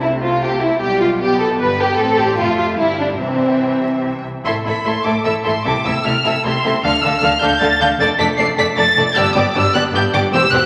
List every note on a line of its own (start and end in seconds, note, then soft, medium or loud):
0.00 0.77 C2 medium
0.00 0.77 C3 medium
0.00 0.77 A3 medium
0.00 0.10 E4 medium
0.00 0.41 C5 soft
0.23 0.42 F4 medium
0.42 0.62 G4 medium
0.42 0.80 C5 soft
0.62 0.81 E4 medium
0.81 1.59 B1 medium
0.81 1.59 B2 medium
0.81 1.20 G3 soft
0.81 1.00 G4 medium
0.81 1.20 D5 medium
1.01 1.09 F4 medium
1.21 1.98 B3 medium
1.21 1.40 G4 medium
1.21 1.59 D5 soft
1.40 1.48 A4 medium
1.60 1.98 G1 medium
1.60 1.98 G2 medium
1.60 1.79 B4 medium
1.60 1.98 D5 medium
1.80 1.99 G4 medium
1.98 2.37 A1 medium
1.98 2.37 A2 medium
1.98 2.37 C4 medium
1.98 2.18 A4 medium
1.98 2.18 C5 medium
2.18 2.38 G4 medium
2.18 2.37 D5 medium
2.37 2.77 F1 medium
2.37 2.78 F2 medium
2.37 2.77 A3 medium
2.37 2.57 F4 medium
2.37 2.77 E5 medium
2.58 2.66 F4 medium
2.77 3.19 G1 medium
2.77 3.19 G2 medium
2.77 3.19 G3 medium
2.77 2.98 E4 medium
2.77 3.19 F5 medium
3.00 3.08 D4 medium
3.19 4.23 C2 medium
3.19 4.23 C3 soft
3.19 4.25 E3 soft
3.19 4.02 C4 medium
3.19 4.23 E5 soft
4.45 4.53 A1 medium
4.45 4.53 A2 medium
4.45 4.54 A3 medium
4.45 4.53 E4 medium
4.45 4.54 A4 medium
4.45 4.54 E5 medium
4.45 4.54 C6 medium
4.65 4.73 A1 medium
4.65 4.73 A2 medium
4.65 4.74 A3 soft
4.65 4.73 E4 medium
4.65 4.75 A4 soft
4.65 4.75 E5 soft
4.65 4.85 B5 medium
4.85 4.94 A1 medium
4.85 4.93 A2 medium
4.85 4.93 A3 medium
4.85 4.93 E4 medium
4.85 4.94 A4 medium
4.85 4.93 E5 medium
4.85 5.05 C6 medium
5.04 5.13 A1 medium
5.04 5.13 A2 medium
5.04 5.13 A3 medium
5.04 5.13 E4 medium
5.04 5.13 A4 medium
5.04 5.13 E5 medium
5.04 5.25 D6 medium
5.24 5.33 A1 medium
5.24 5.33 A2 medium
5.24 5.33 A3 medium
5.24 5.33 E4 medium
5.24 5.32 A4 medium
5.24 5.33 E5 medium
5.24 5.33 E6 medium
5.44 5.54 A1 medium
5.44 5.53 A2 medium
5.44 5.53 A3 medium
5.44 5.53 E4 medium
5.44 5.53 A4 medium
5.44 5.53 E5 medium
5.44 5.64 C6 medium
5.65 5.73 C2 medium
5.65 5.73 C3 medium
5.65 5.73 A3 medium
5.65 5.73 E4 medium
5.65 5.73 A4 medium
5.65 5.73 E5 medium
5.65 5.84 D6 loud
5.85 5.93 C2 medium
5.85 5.93 C3 medium
5.85 5.93 A3 medium
5.85 5.93 E4 medium
5.85 5.93 A4 medium
5.85 5.93 E5 medium
5.85 6.05 E6 medium
6.04 6.12 C2 medium
6.04 6.13 C3 medium
6.04 6.12 A3 medium
6.04 6.13 E4 medium
6.04 6.12 A4 medium
6.04 6.12 E5 medium
6.04 6.24 F6 medium
6.24 6.32 C2 medium
6.24 6.33 C3 medium
6.24 6.32 A3 medium
6.24 6.32 E4 medium
6.24 6.33 A4 medium
6.24 6.33 E5 medium
6.24 6.44 E6 medium
6.43 6.51 C2 medium
6.43 6.52 C3 medium
6.43 6.52 A3 medium
6.43 6.52 E4 medium
6.43 6.52 A4 medium
6.43 6.53 E5 medium
6.43 6.83 C6 loud
6.63 6.71 C2 medium
6.63 6.72 C3 medium
6.63 6.71 A3 medium
6.63 6.71 E4 medium
6.63 6.72 A4 medium
6.63 6.72 E5 medium
6.83 6.91 D2 medium
6.83 6.91 D3 medium
6.83 6.91 A3 medium
6.83 6.91 D4 medium
6.83 6.91 A4 medium
6.83 6.92 F5 medium
6.83 7.03 F6 loud
7.02 7.11 D2 medium
7.02 7.11 D3 medium
7.02 7.10 A3 medium
7.02 7.10 D4 medium
7.02 7.12 A4 medium
7.02 7.12 F5 medium
7.02 7.22 E6 loud
7.21 7.30 D2 medium
7.21 7.30 D3 medium
7.21 7.29 A3 medium
7.21 7.29 D4 medium
7.21 7.30 A4 medium
7.21 7.31 F5 medium
7.21 7.41 F6 loud
7.40 7.49 D2 medium
7.40 7.49 D3 medium
7.40 7.48 A3 medium
7.40 7.48 D4 medium
7.40 7.50 A4 medium
7.40 7.49 F5 medium
7.40 7.61 G6 loud
7.60 7.69 D2 medium
7.60 7.68 D3 medium
7.60 7.68 A3 medium
7.60 7.68 D4 medium
7.60 7.69 A4 medium
7.60 7.69 F5 medium
7.60 7.80 A6 loud
7.80 7.88 D2 medium
7.80 7.88 D3 medium
7.80 7.88 A3 medium
7.80 7.88 D4 medium
7.80 7.89 A4 medium
7.80 7.88 F5 medium
7.80 7.88 G6 loud
7.99 8.07 F1 medium
7.99 8.07 F2 medium
7.99 8.07 A3 medium
7.99 8.07 D4 medium
7.99 8.08 A4 medium
7.99 8.08 D5 medium
7.99 8.08 A6 loud
8.18 8.27 F1 medium
8.18 8.27 F2 medium
8.18 8.27 A3 medium
8.18 8.27 D4 medium
8.18 8.26 A4 medium
8.18 8.26 D5 medium
8.18 8.27 B6 loud
8.38 8.46 F1 medium
8.38 8.46 F2 medium
8.38 8.46 A3 medium
8.38 8.46 D4 medium
8.38 8.46 A4 medium
8.38 8.46 D5 medium
8.38 8.46 C7 loud
8.58 8.66 F1 medium
8.58 8.66 F2 medium
8.58 8.66 A3 medium
8.58 8.66 D4 medium
8.58 8.66 A4 medium
8.58 8.66 D5 medium
8.58 8.66 B6 loud
8.76 8.85 F1 medium
8.76 8.84 F2 medium
8.76 8.85 A3 medium
8.76 8.85 D4 medium
8.76 8.85 A4 medium
8.76 8.86 D5 medium
8.76 9.15 A6 loud
8.96 9.04 F1 medium
8.96 9.04 F2 medium
8.96 9.04 A3 medium
8.96 9.04 D4 medium
8.96 9.05 A4 medium
8.96 9.05 D5 medium
9.15 9.24 G1 loud
9.15 9.23 G2 medium
9.15 9.24 B3 medium
9.15 9.24 D4 medium
9.15 9.24 G4 medium
9.15 9.24 D5 medium
9.15 9.35 E6 loud
9.35 9.43 G1 medium
9.35 9.43 G2 medium
9.35 9.43 B3 medium
9.35 9.43 D4 medium
9.35 9.44 G4 medium
9.35 9.44 D5 medium
9.35 9.55 D6 loud
9.54 9.63 G1 medium
9.54 9.63 G2 medium
9.54 9.62 B3 medium
9.54 9.62 D4 medium
9.54 9.63 G4 medium
9.54 9.63 D5 medium
9.54 9.74 E6 loud
9.73 9.82 G1 medium
9.73 9.82 G2 medium
9.73 9.81 B3 medium
9.73 9.81 D4 medium
9.73 9.82 G4 medium
9.73 9.82 D5 medium
9.73 9.82 F#6 loud
9.92 10.02 G1 medium
9.92 10.01 G2 medium
9.92 10.00 B3 medium
9.92 10.01 D4 medium
9.92 10.03 G4 medium
9.92 10.02 D5 medium
9.92 10.02 G6 loud
10.12 10.21 G1 medium
10.12 10.21 G2 medium
10.12 10.20 B3 medium
10.12 10.20 D4 medium
10.12 10.22 G4 medium
10.12 10.22 D5 medium
10.12 10.21 D6 loud
10.31 10.40 E1 loud
10.31 10.40 E2 loud
10.31 10.39 C4 medium
10.31 10.39 G4 medium
10.31 10.41 G4 medium
10.31 10.41 C5 medium
10.31 10.52 E6 loud
10.51 10.59 E1 medium
10.51 10.60 E2 medium
10.51 10.59 C4 medium
10.51 10.59 G4 medium
10.51 10.61 G4 medium
10.51 10.61 C5 medium
10.51 10.66 F#6 loud